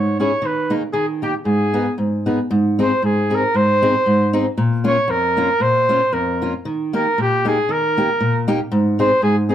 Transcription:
0.00 0.31 G#2 medium
0.00 0.19 C#5 medium
0.19 0.31 C#4 medium
0.19 0.31 E4 soft
0.19 0.31 G#4 medium
0.19 0.48 C#5 medium
0.42 0.81 D#3 medium
0.46 0.73 B4 medium
0.70 0.81 A#3 medium
0.70 0.82 D#4 medium
0.70 0.81 G#4 medium
0.93 1.33 D#3 medium
0.93 1.06 G#4 medium
1.22 1.33 A#3 medium
1.22 1.33 D#4 medium
1.22 1.33 G4 medium
1.45 1.86 G#2 medium
1.45 1.95 G#4 medium
1.74 1.85 B3 medium
1.74 1.85 D#4 medium
1.74 1.85 G#4 medium
1.98 2.39 G#2 medium
2.26 2.38 B3 medium
2.26 2.38 D#4 medium
2.26 2.38 G#4 medium
2.51 2.91 G#2 medium
2.79 2.90 C4 medium
2.79 2.91 D#4 medium
2.79 2.91 G#4 medium
2.79 3.04 C5 loud
3.02 3.43 G#2 medium
3.02 3.36 G#4 medium
3.30 3.42 C4 medium
3.30 3.42 D#4 medium
3.30 3.42 G#4 medium
3.35 3.57 A#4 medium
3.54 3.94 G#2 medium
3.54 4.35 C5 loud
3.82 3.93 C4 medium
3.82 3.94 D#4 medium
3.82 3.94 G#4 medium
4.06 4.46 G#2 medium
4.33 4.45 C4 medium
4.33 4.45 D#4 medium
4.33 4.45 G#4 medium
4.58 4.97 A#2 medium
4.84 4.96 A#3 medium
4.84 4.96 C#4 medium
4.84 4.96 F4 medium
4.84 5.12 C#5 loud
5.08 5.48 F2 medium
5.08 5.63 A#4 medium
5.37 5.48 A#3 medium
5.37 5.48 C#4 medium
5.37 5.49 F4 medium
5.60 6.00 A#2 medium
5.60 6.15 C5 loud
5.89 6.00 A#3 medium
5.89 6.00 C#4 medium
5.89 6.00 F4 medium
6.13 6.53 F2 medium
6.13 6.54 A#4 medium
6.42 6.52 A#3 medium
6.42 6.53 C#4 soft
6.42 6.53 F4 medium
6.65 7.06 D#3 medium
6.93 7.05 A#3 medium
6.93 7.05 D#4 soft
6.93 7.05 G4 medium
6.93 7.17 A#4 medium
7.18 7.58 A#2 medium
7.18 7.46 G4 medium
7.45 7.56 A#3 medium
7.45 7.57 D#4 medium
7.45 7.57 G4 medium
7.45 7.73 G#4 medium
7.69 8.08 D#3 medium
7.69 8.49 A#4 medium
7.97 8.08 A#3 medium
7.97 8.08 D#4 medium
7.97 8.08 G4 medium
8.21 8.59 A#2 medium
8.48 8.59 A#3 medium
8.48 8.59 D#4 medium
8.48 8.59 G4 loud
8.72 9.10 G#2 medium
8.99 9.09 C4 medium
8.99 9.10 D#4 medium
8.99 9.10 G#4 medium
8.99 9.21 C5 medium
9.22 9.55 G#2 medium
9.22 9.35 G#4 medium
9.49 9.55 C4 medium
9.49 9.55 D#4 medium
9.49 9.55 G#4 medium

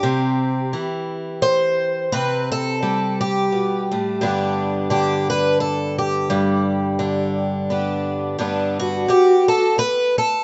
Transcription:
0.00 0.73 C3 medium
0.00 2.11 G4 medium
0.73 2.09 E3 medium
1.42 2.12 C5 loud
2.12 3.52 C3 medium
2.12 2.51 B4 loud
2.52 3.20 A4 medium
2.82 4.22 G3 medium
3.21 4.21 G4 medium
3.52 3.91 B2 medium
3.91 4.22 A2 medium
4.21 6.29 G2 medium
4.21 4.89 D3 soft
4.21 7.70 B3 medium
4.21 7.70 D4 medium
4.21 4.91 G4 soft
4.90 6.98 D3 medium
4.90 5.29 G4 medium
5.30 5.60 B4 medium
5.60 5.98 A4 medium
5.98 7.70 G4 medium
6.30 8.35 G2 medium
6.99 8.38 D3 medium
7.70 8.36 B3 soft
7.70 8.36 D4 soft
7.70 8.37 G4 soft
8.38 9.08 G2 medium
8.38 9.07 D3 soft
8.38 10.44 B3 soft
8.38 8.79 D4 medium
8.80 9.79 F#4 medium
9.08 9.48 G4 medium
9.08 muted twelve-string acoustic guitar stroke medium
9.48 9.78 A4 medium
9.78 10.18 B4 loud
9.78 muted twelve-string acoustic guitar stroke medium
10.18 10.44 A4 medium

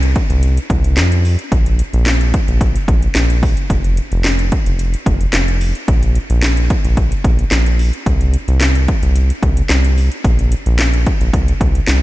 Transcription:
0.00 0.15 C2 medium
0.00 closed hi-hat medium
0.16 kick loud
0.16 closed hi-hat medium
0.30 0.59 C2 medium
0.30 closed hi-hat medium
0.43 closed hi-hat loud
0.57 closed hi-hat medium
0.70 0.99 C2 loud
0.70 kick loud
0.70 closed hi-hat medium
0.84 closed hi-hat medium
0.97 1.37 F2 loud
0.97 snare medium
0.97 clap loud
0.97 closed hi-hat loud
1.12 closed hi-hat soft
1.25 open hi-hat medium
1.39 closed hi-hat medium
1.52 1.82 A#1 loud
1.52 kick loud
1.52 closed hi-hat medium
1.66 closed hi-hat medium
1.79 closed hi-hat medium
1.93 2.33 A#1 medium
1.93 closed hi-hat medium
2.06 snare medium
2.06 clap loud
2.06 closed hi-hat medium
2.21 closed hi-hat medium
2.34 kick medium
2.34 closed hi-hat medium
2.48 2.77 A#1 medium
2.48 closed hi-hat medium
2.61 kick loud
2.61 closed hi-hat medium
2.76 closed hi-hat medium
2.88 3.08 A#1 loud
2.88 kick loud
2.88 closed hi-hat medium
3.02 closed hi-hat medium
3.15 3.55 A#1 loud
3.15 snare medium
3.15 clap loud
3.15 closed hi-hat loud
3.30 closed hi-hat soft
3.43 kick medium
3.43 open hi-hat medium
3.57 closed hi-hat medium
3.70 4.00 F1 loud
3.70 kick medium
3.70 closed hi-hat medium
3.84 closed hi-hat medium
3.97 closed hi-hat medium
4.12 4.51 F1 medium
4.12 closed hi-hat medium
4.24 snare medium
4.24 clap loud
4.24 closed hi-hat medium
4.39 closed hi-hat medium
4.52 kick medium
4.52 closed hi-hat medium
4.66 4.95 F1 medium
4.66 closed hi-hat medium
4.79 closed hi-hat medium
4.94 closed hi-hat medium
5.06 5.26 F1 medium
5.06 kick medium
5.06 closed hi-hat medium
5.21 closed hi-hat medium
5.33 5.73 F1 medium
5.33 snare medium
5.33 clap loud
5.33 closed hi-hat loud
5.48 closed hi-hat medium
5.61 open hi-hat medium
5.75 closed hi-hat medium
5.88 6.18 A#1 loud
5.88 kick medium
5.88 closed hi-hat medium
6.03 closed hi-hat medium
6.15 closed hi-hat medium
6.30 6.69 A#1 medium
6.30 closed hi-hat medium
6.42 snare medium
6.42 clap loud
6.42 closed hi-hat medium
6.57 closed hi-hat medium
6.70 kick medium
6.70 closed hi-hat medium
6.84 7.13 A#1 medium
6.84 closed hi-hat medium
6.97 kick loud
6.97 closed hi-hat loud
7.12 closed hi-hat medium
7.24 7.44 A#1 medium
7.24 kick loud
7.24 closed hi-hat medium
7.39 closed hi-hat medium
7.51 7.91 A#1 loud
7.51 snare medium
7.51 clap loud
7.51 closed hi-hat loud
7.66 closed hi-hat soft
7.79 open hi-hat medium
7.93 closed hi-hat medium
8.06 8.37 C2 loud
8.06 kick loud
8.06 closed hi-hat medium
8.21 closed hi-hat medium
8.34 closed hi-hat medium
8.48 8.88 C2 medium
8.48 closed hi-hat medium
8.61 snare medium
8.61 clap loud
8.61 closed hi-hat medium
8.75 closed hi-hat medium
8.88 kick medium
8.88 closed hi-hat medium
9.03 9.32 C2 medium
9.03 closed hi-hat medium
9.15 closed hi-hat medium
9.30 closed hi-hat medium
9.43 9.62 C2 medium
9.43 kick loud
9.43 closed hi-hat medium
9.57 closed hi-hat medium
9.69 10.10 C2 loud
9.69 snare medium
9.69 clap loud
9.69 closed hi-hat loud
9.85 closed hi-hat medium
9.97 open hi-hat medium
10.12 closed hi-hat medium
10.24 10.55 A#1 medium
10.24 kick medium
10.24 closed hi-hat medium
10.39 closed hi-hat medium
10.52 closed hi-hat medium
10.66 11.06 A#1 medium
10.66 closed hi-hat medium
10.79 snare medium
10.79 clap loud
10.79 closed hi-hat medium
10.93 closed hi-hat medium
11.06 kick medium
11.06 closed hi-hat medium
11.21 11.30 A#1 medium
11.21 closed hi-hat medium
11.33 11.53 C2 loud
11.33 kick loud
11.33 closed hi-hat medium
11.48 closed hi-hat medium
11.61 11.81 C2 medium
11.61 kick loud
11.61 closed hi-hat medium
11.75 closed hi-hat medium
11.87 12.02 C2 loud
11.87 snare medium
11.87 clap loud
11.87 closed hi-hat loud

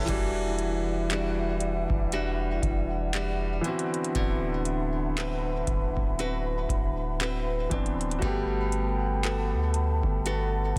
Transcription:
0.00 1.10 G3 medium
0.00 0.20 C#4 medium
0.00 0.36 E4 medium
0.00 1.11 E4 medium
0.00 0.35 A4 medium
0.00 0.10 C#5 medium
0.00 0.10 E5 medium
0.05 1.87 E1 loud
0.05 3.59 E3 medium
0.05 3.64 E3 medium
0.05 3.60 G3 medium
0.05 3.61 E4 medium
0.05 3.61 D5 medium
0.05 3.61 E5 medium
0.05 7.90 F#5 medium
0.05 kick loud
0.05 closed hi-hat medium
0.05 crash loud
0.09 3.61 D4 medium
0.09 3.62 F#4 medium
0.59 closed hi-hat medium
1.10 2.11 G3 medium
1.10 2.12 D4 medium
1.10 2.13 F#4 medium
1.10 clap loud
1.10 closed hi-hat medium
1.60 closed hi-hat medium
1.90 2.60 E1 loud
1.90 kick loud
2.12 3.13 G3 medium
2.12 3.14 D4 medium
2.12 3.15 F#4 medium
2.12 closed hi-hat medium
2.63 3.60 E1 loud
2.63 kick medium
2.63 closed hi-hat medium
3.13 3.76 G3 medium
3.13 5.17 D4 medium
3.13 5.17 F#4 medium
3.13 clap loud
3.13 closed hi-hat medium
3.61 4.15 D3 medium
3.61 7.66 E3 medium
3.61 7.67 B3 medium
3.61 8.18 D4 medium
3.61 7.98 B4 medium
3.61 7.95 E5 medium
3.61 10.79 B5 medium
3.61 closed hi-hat medium
3.66 7.68 C4 medium
3.66 7.69 F#4 medium
3.79 closed hi-hat medium
3.94 closed hi-hat medium
4.04 closed hi-hat medium
4.15 5.64 D1 loud
4.15 8.22 D3 medium
4.15 kick loud
4.15 closed hi-hat medium
4.65 closed hi-hat medium
5.17 6.18 C4 medium
5.17 6.19 F#4 medium
5.17 6.20 B4 medium
5.17 clap loud
5.17 closed hi-hat medium
5.67 5.96 D1 loud
5.67 kick loud
5.67 closed hi-hat medium
5.97 6.66 D1 loud
5.97 kick loud
6.19 7.19 C4 medium
6.19 7.21 F#4 medium
6.19 7.21 B4 medium
6.19 closed hi-hat medium
6.69 7.67 D1 loud
6.69 kick loud
6.69 closed hi-hat medium
7.20 7.70 C4 medium
7.20 9.24 F#4 medium
7.20 9.25 B4 medium
7.20 clap loud
7.20 closed hi-hat medium
7.70 8.20 D1 loud
7.70 8.21 E3 medium
7.70 8.22 B3 medium
7.70 8.34 C4 medium
7.70 8.22 C4 medium
7.70 8.23 D4 medium
7.70 kick loud
7.70 closed hi-hat medium
7.86 closed hi-hat medium
8.01 closed hi-hat medium
8.11 closed hi-hat medium
8.19 9.55 G1 loud
8.19 10.79 G3 loud
8.19 10.79 A3 medium
8.19 10.79 F#4 medium
8.19 10.79 A4 medium
8.19 10.79 F#5 medium
8.19 10.79 A5 medium
8.19 kick loud
8.19 closed hi-hat medium
8.23 10.79 B3 medium
8.23 10.79 G4 medium
8.72 closed hi-hat medium
9.24 10.25 B3 medium
9.24 10.26 F#4 medium
9.24 10.25 A4 medium
9.24 clap loud
9.24 closed hi-hat medium
9.53 10.02 D2 loud
9.74 closed hi-hat medium
10.03 10.73 G1 loud
10.03 kick medium
10.26 10.79 B3 medium
10.26 10.79 F#4 medium
10.26 10.79 A4 medium
10.26 closed hi-hat medium

